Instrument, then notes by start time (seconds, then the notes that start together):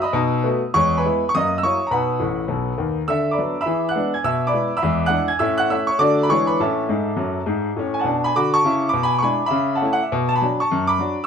grand piano
0.02 D#5 B5 D#6
0.13 B2 D#4
0.44 A3 B3 F#4
0.74 E2 G#3 C#5 C#6
0.98 B4 G#5 B5
1.05 G#3 B3 E4
1.29 C#6
1.35 F#2 A#3 D#5 D#6
1.58 E6
1.63 F#3 A#3 E4 C#5 C#6
1.87 A#5
1.91 B2 D#4 B4 F#5 B5
2.19 A1 A2
2.48 B1 B2
2.78 D#2 D#3
3.08 D3 E5 E6
3.31 D5 B5 D6
3.38 F#3 B3 D4
3.61 E5 B5 E6
3.66 E3 G#4
3.89 F#5 F#6
3.95 G#3 B3 D4
4.14 G#5 G#6
4.24 B2 E5 E6
4.47 D5 B5 D6
4.53 G#3 B3 E4
4.77 E5 B5 E6
4.83 E2 G#3
5.06 G#3 D4 E4 F#5 F#6
5.28 G#5 G#6
5.39 A2 C#4 E5 E6
5.58 F#5 F#6
5.70 A3 C#4 E4 E5 E6
5.87 C#5 C#6
5.99 D3 A3 D4 F#4 D5 D6
6.23 B5
6.29 E3 G#3 D4 E4 G#4 C#5 C#6
6.47 B4 B5
6.60 A2 C#4 A4 E5 A5
6.89 G#2 G#3
7.16 F#2 F#3
7.46 G#2 G#3
7.76 A2 C#4
7.94 G#5
7.99 F#5 A5
8.04 B2 D4
8.24 G#5 B5
8.35 D3 F#4 B5 D6
8.54 A5 C#6
8.64 C#3 E4
8.89 B5 D6
8.93 B2
9.03 G#5 B5
9.18 G#3 B5 C#6
9.23 D4 E4 G#5
9.46 E5 B5
9.50 C#3
9.75 F#5 A5
9.82 A3 C#4 E4
9.93 F#5
10.03 E5
10.12 B2
10.29 A5
10.36 G#5 B5
10.42 F#3 D4 F#4
10.60 A5 C#6
10.71 F#2
10.87 B5 D6
10.99 F#3 D4 F#4
11.24 E6